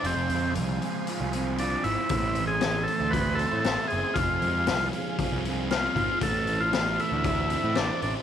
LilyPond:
<<
  \new Staff \with { instrumentName = "String section" } { \time 4/4 \key a \minor \tempo 4 = 117 << { <f'' aes''>1 | <e'' c'''>1 | <f'' aes''>1 | <e'' a''>1 | } \\ { c''1~ | c''1~ | c''1 | c''1 | } >> }
  \new Staff \with { instrumentName = "Transistor combo organ" } { \time 4/4 \key a \minor c'4 r2 d'8 e'8~ | e'8. gis'8. a'8 b'8 a'8 a'8 gis'8 | f'4. r4. f'4 | a'8. f'8. e'4. d'8 d'8 | }
  \new Staff \with { instrumentName = "Distorted electric guitar" } { \time 4/4 \key a \minor f8 aes8 f8 aes8 f'8 c'8 f'8 c'8 | a,8 e8 e8 a8 e'8 c'8 e'8 c'8 | f8 aes8 f8 aes8 f'8 c'8 f'8 c'8 | a,8 e8 e8 a8 e'8 c'8 e'8 c'8 | }
  \new Staff \with { instrumentName = "Picked electric bass" } { \clef bass \time 4/4 \key a \minor f,,16 f,,16 f,8 c,8 r8. c,4~ c,16 aes,,16 r16 | a,,4.~ a,,16 d,4 a,16 a,,16 r16 fis,,16 r16 | f,,16 f,,16 f,8 c,8 r8. c,4~ c,16 aes,,16 r16 | a,,4.~ a,,16 d,4 a,16 a,,16 r16 a,,16 r16 | }
  \new DrumStaff \with { instrumentName = "Drums" } \drummode { \time 4/4 hho8 hho8 hho8 hho8 hho8 hho8 hho8 hho8 | <hho bd>8 hho8 <hho sn>8 hho8 <hho bd>8 hho8 <hho sn>8 hho8 | <hho bd>8 hho8 <hho sn>8 hho8 <hho bd>8 hho8 <hho sn>8 <hho bd>8 | <hho bd>8 hho8 <hho sn>8 hho8 <hho bd>8 hho8 <hho sn>8 hho8 | }
>>